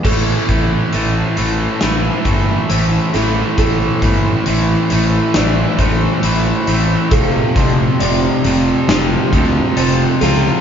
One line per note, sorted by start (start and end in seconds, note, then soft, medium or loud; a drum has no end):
0.04 0.31 A1 medium
0.04 0.48 A2 medium
0.04 0.49 E3 medium
0.04 0.50 A3 medium
0.04 7.08 E4 medium
0.04 0.93 A4 medium
0.04 7.08 C5 medium
0.04 3.55 A5 medium
0.04 10.61 C6 medium
0.04 kick medium
0.04 crash medium
0.49 0.76 A1 medium
0.49 0.92 A2 medium
0.49 0.93 E3 medium
0.49 0.94 A3 medium
0.49 kick medium
0.49 closed hi-hat medium
0.93 1.20 A1 medium
0.93 1.36 A2 medium
0.93 1.37 E3 medium
0.93 1.38 A3 medium
0.93 1.82 E5 medium
0.93 closed hi-hat medium
1.36 1.65 A1 medium
1.36 1.80 A2 medium
1.36 1.80 E3 medium
1.36 1.82 A3 loud
1.36 closed hi-hat medium
1.81 2.09 A1 medium
1.81 2.24 A2 medium
1.81 2.24 E3 medium
1.81 2.26 A3 medium
1.81 snare medium
1.81 closed hi-hat medium
2.25 2.52 G1 medium
2.25 2.68 A2 medium
2.25 2.68 E3 medium
2.25 2.70 A3 medium
2.25 kick medium
2.25 closed hi-hat medium
2.69 2.97 A1 medium
2.69 3.12 A2 medium
2.69 3.13 E3 medium
2.69 3.14 A3 medium
2.69 4.91 E4 medium
2.69 3.14 C5 medium
2.69 closed hi-hat medium
3.13 3.41 A1 medium
3.13 3.56 A2 medium
3.13 3.57 E3 medium
3.13 3.58 A3 medium
3.13 6.64 C4 medium
3.13 3.57 A4 medium
3.13 snare soft
3.13 closed hi-hat medium
3.57 3.85 A1 medium
3.57 4.01 A2 medium
3.57 4.02 E3 medium
3.57 4.03 A3 medium
3.57 4.47 A4 medium
3.57 10.61 G5 medium
3.57 kick medium
3.57 closed hi-hat medium
4.02 4.29 G1 medium
4.02 4.45 A2 medium
4.02 4.46 E3 medium
4.02 4.47 A3 medium
4.02 kick medium
4.02 closed hi-hat medium
4.46 4.74 A1 medium
4.46 4.89 A2 medium
4.46 4.90 E3 medium
4.46 4.92 A3 medium
4.46 5.35 E5 medium
4.46 closed hi-hat medium
4.90 5.18 A1 medium
4.90 5.34 A2 medium
4.90 5.35 E3 loud
4.90 5.36 A3 loud
4.90 closed hi-hat medium
5.34 5.62 A1 medium
5.34 5.78 A2 medium
5.34 5.79 E3 medium
5.34 5.80 A3 medium
5.34 5.79 D5 medium
5.34 snare loud
5.34 closed hi-hat medium
5.78 6.06 A1 medium
5.78 6.22 A2 medium
5.78 6.23 E3 medium
5.78 6.24 A3 medium
5.78 6.66 C5 medium
5.78 kick medium
5.78 closed hi-hat medium
6.23 6.50 A1 medium
6.23 6.65 A2 medium
6.23 6.66 E3 medium
6.23 6.68 A3 medium
6.23 7.12 E4 medium
6.23 closed hi-hat medium
6.67 6.94 A1 medium
6.67 7.09 A2 medium
6.67 7.09 E3 medium
6.67 10.18 A3 medium
6.67 7.12 C4 medium
6.67 7.12 C5 medium
6.67 closed hi-hat medium
7.11 7.38 F1 medium
7.11 7.54 F2 loud
7.11 7.55 C3 medium
7.11 7.57 F3 loud
7.11 10.61 F4 medium
7.11 8.00 A4 medium
7.11 10.61 A4 medium
7.11 kick loud
7.11 closed hi-hat medium
7.56 7.83 F1 medium
7.56 7.99 F2 medium
7.56 8.00 C3 medium
7.56 8.01 F3 medium
7.56 8.00 G3 medium
7.56 kick medium
7.56 closed hi-hat medium
8.00 8.27 F1 medium
8.00 8.43 F2 medium
8.00 8.45 C3 medium
8.00 8.46 F3 medium
8.00 8.88 G3 medium
8.00 8.88 D5 medium
8.00 closed hi-hat medium
8.44 8.71 F1 medium
8.44 8.88 F2 medium
8.44 8.88 C3 medium
8.44 8.89 F3 loud
8.44 9.32 C4 medium
8.44 closed hi-hat medium
8.88 9.15 F1 medium
8.88 9.32 F2 medium
8.88 9.33 C3 medium
8.88 9.33 F3 medium
8.88 10.61 G3 medium
8.88 snare loud
8.88 closed hi-hat medium
9.33 9.60 D2 medium
9.33 9.75 F2 medium
9.33 9.76 C3 medium
9.33 9.77 F3 loud
9.33 10.61 C4 medium
9.33 kick medium
9.33 closed hi-hat medium
9.77 10.04 F1 medium
9.77 10.20 F2 medium
9.77 10.21 C3 medium
9.77 10.22 F3 medium
9.77 10.61 A4 medium
9.77 10.21 C5 medium
9.77 closed hi-hat medium
10.21 10.48 C#2 medium
10.21 10.61 F2 medium
10.21 10.61 C3 medium
10.21 10.61 F3 loud
10.21 10.61 F4 medium
10.21 10.61 A4 medium
10.21 snare soft
10.21 closed hi-hat medium